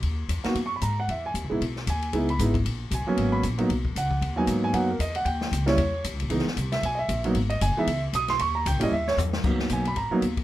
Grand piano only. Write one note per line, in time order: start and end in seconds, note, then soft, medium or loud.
0.44 0.54 A#3 medium
0.44 0.54 B3 medium
0.44 0.55 D#4 medium
0.44 0.55 F#4 medium
0.66 0.73 C#6 medium
0.76 0.83 B5 medium
0.82 0.97 A#5 medium
1.00 1.09 F#5 medium
1.10 1.24 E5 medium
1.26 1.32 G#5 medium
1.50 1.59 G#3 medium
1.50 1.59 B3 medium
1.50 1.60 D#4 medium
1.50 1.60 E4 medium
1.90 2.26 G#5 medium
2.13 2.26 G#3 medium
2.13 2.27 B3 medium
2.13 2.27 D#4 medium
2.13 2.27 E4 medium
2.30 2.39 B5 medium
2.40 2.53 G#3 medium
2.40 2.53 B3 medium
2.40 2.53 D#4 medium
2.40 2.54 E4 medium
2.94 3.31 G#5 medium
3.07 3.41 F#3 medium
3.07 3.41 A#3 medium
3.07 3.42 B3 medium
3.07 3.42 C#4 medium
3.32 3.43 B5 loud
3.58 3.68 F#3 medium
3.58 3.68 A#3 medium
3.58 3.68 B3 medium
3.58 3.69 D#4 medium
3.98 4.35 F#5 medium
4.36 4.71 F#3 medium
4.36 4.72 A#3 medium
4.36 4.72 B3 medium
4.36 4.72 D#4 medium
4.36 4.44 G#5 medium
4.64 4.74 G#5 loud
4.73 4.87 F#3 medium
4.73 4.87 A#3 medium
4.73 4.87 B3 medium
4.73 4.88 D#4 medium
4.73 4.88 F#5 medium
4.90 5.00 A#4 medium
5.01 5.15 D#5 medium
5.16 5.26 F#5 medium
5.25 5.64 G5 medium
5.66 5.76 G3 medium
5.66 5.76 A#3 medium
5.66 5.77 C#4 medium
5.66 5.77 E4 medium
5.66 6.02 C#5 medium
6.30 6.44 E3 medium
6.30 6.44 G#3 medium
6.30 6.44 B3 medium
6.30 6.44 D#4 medium
6.72 6.82 E5 medium
6.85 6.99 G#5 medium
6.95 6.97 D#5 medium
6.95 7.23 E5 medium
7.25 7.34 F#3 medium
7.25 7.34 A#3 medium
7.25 7.35 B3 medium
7.25 7.35 D#4 medium
7.50 7.60 D#5 medium
7.62 7.76 G#5 loud
7.77 7.86 E3 medium
7.77 7.87 G#3 medium
7.77 7.87 B3 medium
7.77 7.87 D#4 medium
7.77 8.02 E5 medium
8.15 8.29 D#6 loud
8.30 8.40 C6 loud
8.41 8.55 C#6 loud
8.55 8.65 A#5 medium
8.67 8.81 G5 medium
8.80 8.90 G3 medium
8.80 8.90 A#3 medium
8.80 8.90 C#4 medium
8.80 8.91 E4 medium
8.80 8.92 D#5 medium
8.93 9.07 E5 loud
9.08 9.14 C#5 medium
9.44 9.82 F#3 medium
9.44 9.83 A#3 soft
9.44 9.83 B3 soft
9.44 9.83 D#4 medium
9.73 9.86 G#5 medium
9.88 9.97 B5 loud
9.97 10.11 A#5 medium
10.11 10.21 F#3 medium
10.11 10.22 A#3 medium
10.11 10.21 B3 medium
10.11 10.22 D#4 medium